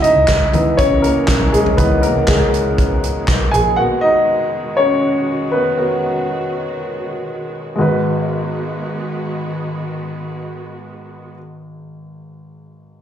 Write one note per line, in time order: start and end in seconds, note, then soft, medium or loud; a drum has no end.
0.00 0.14 C#2 medium
0.00 7.75 B2 medium
0.00 3.74 C#3 medium
0.00 3.74 E3 medium
0.00 7.75 G#3 medium
0.00 3.80 E4 medium
0.00 0.80 D#5 medium
0.00 3.80 E5 medium
0.00 closed hi-hat medium
0.04 0.53 D#4 medium
0.04 floor tom medium
0.16 0.28 C#2 medium
0.28 1.25 C#2 medium
0.28 kick medium
0.28 snare loud
0.28 clap medium
0.28 closed hi-hat medium
0.53 1.25 E3 soft
0.53 1.25 B3 soft
0.53 1.25 D#4 medium
0.53 closed hi-hat medium
0.53 floor tom medium
0.77 1.02 C#4 medium
0.77 1.04 C#5 medium
0.77 kick loud
0.77 closed hi-hat medium
1.02 1.50 A#3 medium
1.02 1.54 A#4 medium
1.02 closed hi-hat medium
1.28 1.52 B1 medium
1.28 kick medium
1.28 snare loud
1.28 clap medium
1.28 closed hi-hat medium
1.41 floor tom medium
1.52 1.77 B1 medium
1.52 1.60 G#3 medium
1.52 1.58 G#4 medium
1.52 closed hi-hat medium
1.66 floor tom medium
1.77 2.13 C#2 medium
1.77 2.11 E3 soft
1.77 2.02 B3 medium
1.77 2.12 D#4 medium
1.77 2.01 B4 medium
1.77 kick medium
1.77 closed hi-hat medium
2.02 2.27 A#3 medium
2.02 2.29 A#4 medium
2.02 closed hi-hat medium
2.16 2.27 C#2 medium
2.27 3.24 C#2 medium
2.27 3.25 G#3 soft
2.27 3.24 G#4 medium
2.27 kick loud
2.27 snare medium
2.27 clap medium
2.27 closed hi-hat medium
2.54 closed hi-hat medium
2.78 kick medium
2.78 closed hi-hat medium
3.04 closed hi-hat medium
3.28 3.51 B1 medium
3.28 kick loud
3.28 snare medium
3.28 clap medium
3.28 closed hi-hat medium
3.51 3.77 A#1 medium
3.51 3.77 G#4 medium
3.51 3.78 G#5 medium
3.51 closed hi-hat medium
3.76 7.75 D#3 medium
3.76 4.11 A#3 soft
3.76 4.11 B3 soft
3.76 4.12 F#4 medium
3.76 7.75 F#4 medium
3.76 3.82 F#5 medium
4.01 4.74 D#4 medium
4.01 4.80 D#5 medium
4.77 5.50 C#4 medium
4.77 5.55 C#5 medium
5.52 5.76 B3 soft
5.52 7.24 B4 medium
5.78 6.49 B3 soft
5.78 6.50 F#4 soft
5.78 6.49 A#4 soft
7.76 11.33 G#1 medium
7.76 11.34 D#3 medium
7.76 11.30 G#3 medium
7.76 11.34 G#3 medium
7.76 11.34 B3 medium
7.76 11.33 F#4 medium
7.76 11.34 F#4 medium
7.81 11.36 B4 medium